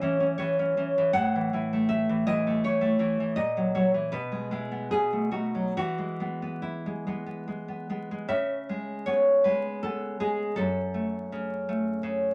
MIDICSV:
0, 0, Header, 1, 2, 480
1, 0, Start_track
1, 0, Tempo, 767263
1, 717, Tempo, 741656
1, 718, Time_signature, 3, 2, 24, 8
1, 2157, Tempo, 773196
1, 3117, Tempo, 864553
1, 4077, Tempo, 834492
1, 5037, Tempo, 757576
1, 6477, Tempo, 728155
1, 7634, End_track
2, 0, Start_track
2, 0, Title_t, "Nylon-string guitar"
2, 0, Program_c, 0, 24
2, 0, Note_on_c, 0, 49, 52
2, 0, Note_on_c, 0, 75, 83
2, 9, Note_on_c, 0, 52, 43
2, 16, Note_on_c, 0, 61, 48
2, 119, Note_off_c, 0, 61, 0
2, 126, Note_on_c, 0, 61, 42
2, 201, Note_off_c, 0, 75, 0
2, 236, Note_on_c, 0, 73, 57
2, 238, Note_off_c, 0, 52, 0
2, 245, Note_on_c, 0, 52, 40
2, 362, Note_off_c, 0, 61, 0
2, 370, Note_on_c, 0, 61, 42
2, 475, Note_off_c, 0, 52, 0
2, 478, Note_off_c, 0, 61, 0
2, 482, Note_on_c, 0, 52, 33
2, 485, Note_on_c, 0, 61, 38
2, 605, Note_off_c, 0, 52, 0
2, 612, Note_on_c, 0, 52, 41
2, 692, Note_off_c, 0, 49, 0
2, 700, Note_off_c, 0, 61, 0
2, 702, Note_off_c, 0, 73, 0
2, 709, Note_on_c, 0, 78, 84
2, 713, Note_off_c, 0, 52, 0
2, 715, Note_on_c, 0, 45, 58
2, 853, Note_on_c, 0, 52, 38
2, 959, Note_off_c, 0, 52, 0
2, 967, Note_on_c, 0, 52, 32
2, 972, Note_on_c, 0, 64, 38
2, 1094, Note_on_c, 0, 57, 39
2, 1167, Note_off_c, 0, 78, 0
2, 1197, Note_on_c, 0, 76, 60
2, 1322, Note_off_c, 0, 52, 0
2, 1330, Note_on_c, 0, 52, 42
2, 1425, Note_off_c, 0, 76, 0
2, 1440, Note_off_c, 0, 52, 0
2, 1442, Note_on_c, 0, 75, 77
2, 1445, Note_off_c, 0, 64, 0
2, 1447, Note_on_c, 0, 52, 40
2, 1452, Note_on_c, 0, 64, 42
2, 1565, Note_off_c, 0, 57, 0
2, 1573, Note_on_c, 0, 57, 38
2, 1669, Note_off_c, 0, 75, 0
2, 1677, Note_off_c, 0, 52, 0
2, 1681, Note_off_c, 0, 45, 0
2, 1684, Note_on_c, 0, 52, 38
2, 1687, Note_on_c, 0, 73, 65
2, 1787, Note_off_c, 0, 57, 0
2, 1795, Note_on_c, 0, 57, 40
2, 1904, Note_off_c, 0, 52, 0
2, 1907, Note_off_c, 0, 64, 0
2, 1912, Note_on_c, 0, 52, 38
2, 1915, Note_on_c, 0, 64, 43
2, 2039, Note_off_c, 0, 52, 0
2, 2047, Note_on_c, 0, 52, 37
2, 2134, Note_off_c, 0, 64, 0
2, 2145, Note_off_c, 0, 73, 0
2, 2150, Note_on_c, 0, 75, 78
2, 2156, Note_on_c, 0, 46, 49
2, 2159, Note_off_c, 0, 57, 0
2, 2164, Note_off_c, 0, 52, 0
2, 2280, Note_on_c, 0, 54, 41
2, 2382, Note_off_c, 0, 75, 0
2, 2384, Note_off_c, 0, 54, 0
2, 2391, Note_on_c, 0, 54, 36
2, 2391, Note_on_c, 0, 73, 47
2, 2396, Note_on_c, 0, 64, 39
2, 2508, Note_off_c, 0, 54, 0
2, 2511, Note_on_c, 0, 52, 35
2, 2610, Note_off_c, 0, 64, 0
2, 2618, Note_off_c, 0, 46, 0
2, 2618, Note_off_c, 0, 73, 0
2, 2621, Note_on_c, 0, 71, 60
2, 2625, Note_on_c, 0, 47, 51
2, 2632, Note_off_c, 0, 52, 0
2, 2745, Note_on_c, 0, 56, 35
2, 2858, Note_off_c, 0, 56, 0
2, 2865, Note_on_c, 0, 56, 38
2, 2873, Note_on_c, 0, 64, 43
2, 2992, Note_on_c, 0, 59, 40
2, 3089, Note_off_c, 0, 56, 0
2, 3092, Note_off_c, 0, 71, 0
2, 3093, Note_off_c, 0, 64, 0
2, 3099, Note_off_c, 0, 47, 0
2, 3112, Note_on_c, 0, 68, 61
2, 3117, Note_off_c, 0, 59, 0
2, 3120, Note_on_c, 0, 47, 47
2, 3234, Note_on_c, 0, 57, 38
2, 3330, Note_off_c, 0, 57, 0
2, 3335, Note_off_c, 0, 68, 0
2, 3336, Note_on_c, 0, 57, 30
2, 3338, Note_on_c, 0, 66, 44
2, 3341, Note_on_c, 0, 63, 36
2, 3466, Note_on_c, 0, 54, 34
2, 3562, Note_off_c, 0, 57, 0
2, 3564, Note_off_c, 0, 63, 0
2, 3574, Note_off_c, 0, 66, 0
2, 3576, Note_off_c, 0, 47, 0
2, 3587, Note_off_c, 0, 54, 0
2, 3590, Note_on_c, 0, 52, 48
2, 3591, Note_on_c, 0, 66, 66
2, 3708, Note_on_c, 0, 56, 34
2, 3823, Note_off_c, 0, 56, 0
2, 3830, Note_on_c, 0, 56, 31
2, 3834, Note_on_c, 0, 59, 34
2, 3946, Note_off_c, 0, 59, 0
2, 3953, Note_on_c, 0, 59, 35
2, 4059, Note_off_c, 0, 66, 0
2, 4063, Note_on_c, 0, 64, 44
2, 4194, Note_off_c, 0, 56, 0
2, 4201, Note_on_c, 0, 56, 31
2, 4312, Note_off_c, 0, 56, 0
2, 4317, Note_off_c, 0, 59, 0
2, 4319, Note_on_c, 0, 56, 37
2, 4324, Note_on_c, 0, 59, 38
2, 4425, Note_off_c, 0, 59, 0
2, 4432, Note_on_c, 0, 59, 32
2, 4538, Note_off_c, 0, 64, 0
2, 4547, Note_off_c, 0, 56, 0
2, 4554, Note_on_c, 0, 56, 33
2, 4666, Note_off_c, 0, 59, 0
2, 4673, Note_on_c, 0, 59, 37
2, 4788, Note_off_c, 0, 56, 0
2, 4791, Note_off_c, 0, 59, 0
2, 4795, Note_on_c, 0, 56, 30
2, 4798, Note_on_c, 0, 59, 36
2, 4913, Note_off_c, 0, 56, 0
2, 4920, Note_on_c, 0, 56, 34
2, 5011, Note_off_c, 0, 59, 0
2, 5016, Note_off_c, 0, 52, 0
2, 5020, Note_on_c, 0, 49, 51
2, 5020, Note_on_c, 0, 76, 77
2, 5036, Note_off_c, 0, 56, 0
2, 5277, Note_on_c, 0, 56, 37
2, 5496, Note_off_c, 0, 76, 0
2, 5508, Note_on_c, 0, 73, 66
2, 5516, Note_on_c, 0, 59, 39
2, 5748, Note_off_c, 0, 73, 0
2, 5749, Note_off_c, 0, 56, 0
2, 5750, Note_on_c, 0, 71, 67
2, 5757, Note_on_c, 0, 56, 44
2, 5988, Note_off_c, 0, 71, 0
2, 5995, Note_on_c, 0, 69, 62
2, 5999, Note_off_c, 0, 59, 0
2, 6006, Note_on_c, 0, 59, 40
2, 6224, Note_off_c, 0, 56, 0
2, 6229, Note_off_c, 0, 69, 0
2, 6231, Note_on_c, 0, 56, 40
2, 6233, Note_on_c, 0, 68, 59
2, 6444, Note_off_c, 0, 49, 0
2, 6456, Note_off_c, 0, 68, 0
2, 6459, Note_on_c, 0, 69, 69
2, 6468, Note_on_c, 0, 42, 55
2, 6472, Note_off_c, 0, 56, 0
2, 6479, Note_off_c, 0, 59, 0
2, 6710, Note_on_c, 0, 57, 36
2, 6961, Note_on_c, 0, 49, 39
2, 7194, Note_off_c, 0, 57, 0
2, 7202, Note_on_c, 0, 57, 42
2, 7421, Note_off_c, 0, 49, 0
2, 7429, Note_on_c, 0, 49, 40
2, 7634, Note_off_c, 0, 42, 0
2, 7634, Note_off_c, 0, 49, 0
2, 7634, Note_off_c, 0, 57, 0
2, 7634, Note_off_c, 0, 69, 0
2, 7634, End_track
0, 0, End_of_file